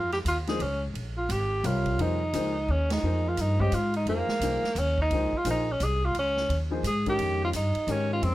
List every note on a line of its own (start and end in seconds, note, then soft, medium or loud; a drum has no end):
0.00 0.24 F2 medium
0.00 0.12 F4 medium
0.12 0.19 G4 medium
0.12 snare soft
0.12 ride soft
0.25 0.59 D#2 medium
0.25 0.37 F4 medium
0.25 hi-hat pedal medium
0.25 ride medium
0.47 0.59 F3 medium
0.47 0.59 A#3 medium
0.47 0.59 D#4 medium
0.47 0.59 G#4 soft
0.47 0.63 G#4 medium
0.47 0.60 C5 medium
0.47 snare soft
0.47 ride soft
0.59 0.93 C#2 medium
0.59 0.83 C#4 medium
0.59 ride soft
0.94 1.28 A#1 medium
0.94 ride soft
1.17 1.33 F4 medium
1.29 1.63 G#1 medium
1.29 1.67 G4 medium
1.29 hi-hat pedal medium
1.29 ride medium
1.64 1.98 C2 medium
1.64 2.16 C3 soft
1.64 2.16 G3 medium
1.64 2.16 F4 soft
1.64 2.03 F4 medium
1.64 2.16 A#4 soft
1.64 2.17 C#5 medium
1.64 hi-hat pedal soft
1.64 ride medium
1.86 kick soft
1.86 ride soft
1.98 2.32 F2 medium
1.98 2.19 F3 soft
1.98 2.19 A#3 soft
1.98 2.19 D#4 soft
1.98 2.72 D#4 medium
1.98 2.19 G#4 soft
1.98 2.19 C5 medium
1.98 ride medium
2.33 2.67 C#2 medium
2.33 2.53 F3 medium
2.33 2.53 A#3 medium
2.33 2.53 D#4 medium
2.33 2.53 G#4 medium
2.33 2.53 C5 medium
2.33 hi-hat pedal soft
2.33 ride medium
2.68 3.02 D#2 medium
2.68 2.91 C#4 medium
2.90 3.30 D#4 medium
2.90 snare medium
2.90 ride medium
3.03 3.36 F2 medium
3.03 3.55 F3 soft
3.03 3.55 A#3 soft
3.03 3.55 D#4 soft
3.03 3.55 G#4 soft
3.03 3.56 C5 soft
3.28 3.42 F4 medium
3.37 3.71 G2 medium
3.37 3.62 D#4 medium
3.37 hi-hat pedal soft
3.37 ride medium
3.59 3.71 G#3 medium
3.59 3.71 C#4 medium
3.59 3.71 G4 medium
3.59 3.76 G4 medium
3.59 3.72 C5 medium
3.59 3.72 D#5 medium
3.59 kick soft
3.72 4.05 G#2 medium
3.72 3.95 F4 medium
3.72 hi-hat pedal soft
3.72 ride medium
3.94 4.07 D#4 medium
3.94 ride soft
4.06 4.26 F2 medium
4.06 4.27 F3 medium
4.06 4.27 A#3 soft
4.06 4.80 A#3 medium
4.06 4.27 D#4 soft
4.06 4.27 G#4 soft
4.06 4.27 C5 medium
4.06 ride soft
4.28 muted upright bass stroke soft
4.28 snare soft
4.40 4.61 C2 medium
4.40 4.61 F3 soft
4.40 4.61 A#3 soft
4.40 4.62 D#4 soft
4.40 4.62 G#4 soft
4.40 4.62 C5 medium
4.40 hi-hat pedal soft
4.40 ride medium
4.64 snare soft
4.75 5.09 D#2 medium
4.75 4.99 C#4 medium
4.75 hi-hat pedal soft
4.75 ride medium
4.98 5.39 D#4 medium
4.98 kick soft
5.10 5.31 C#2 medium
5.10 5.31 F3 medium
5.10 5.31 A#3 soft
5.10 5.31 D#4 soft
5.10 5.31 G#4 soft
5.10 5.32 C5 medium
5.10 ride soft
5.32 muted upright bass stroke soft
5.32 kick soft
5.37 5.48 F4 medium
5.45 5.79 A#1 medium
5.45 5.65 F3 medium
5.45 5.65 A#3 soft
5.45 5.65 D#4 soft
5.45 5.65 G#4 soft
5.45 5.65 C5 medium
5.45 hi-hat pedal medium
5.45 ride medium
5.50 5.73 D#4 medium
5.72 5.85 C#4 medium
5.80 6.14 C2 medium
5.80 6.07 G#4 medium
5.80 hi-hat pedal soft
5.80 ride medium
6.05 6.16 F4 medium
6.15 6.48 C#2 medium
6.15 ride medium
6.19 6.58 C#4 medium
6.37 snare soft
6.49 6.82 D#2 medium
6.49 ride medium
6.71 6.82 F3 medium
6.71 6.83 A#3 medium
6.71 6.83 D#4 medium
6.71 6.83 G#4 medium
6.71 6.83 C5 medium
6.83 7.17 G#2 medium
6.83 7.06 G#4 medium
6.83 hi-hat pedal soft
6.83 ride medium
7.06 7.51 D#3 medium
7.06 7.51 G#3 medium
7.06 7.52 C#4 medium
7.06 7.52 G4 medium
7.06 7.40 G4 medium
7.06 7.52 A#4 medium
7.06 kick soft
7.06 ride soft
7.18 7.52 F2 medium
7.18 ride medium
7.44 7.49 F4 medium
7.53 7.74 G2 medium
7.53 7.92 D#4 medium
7.53 hi-hat pedal medium
7.53 ride medium
7.75 muted upright bass stroke soft
7.75 ride soft
7.87 8.21 G#2 medium
7.87 8.35 D#3 medium
7.87 8.35 G#3 soft
7.87 8.35 C#4 soft
7.87 8.11 C#4 medium
7.87 8.35 G4 medium
7.87 8.35 A#4 medium
7.87 hi-hat pedal soft
7.87 ride soft
8.13 8.26 F4 medium
8.22 8.35 F2 medium
8.22 8.35 C4 medium
8.22 ride medium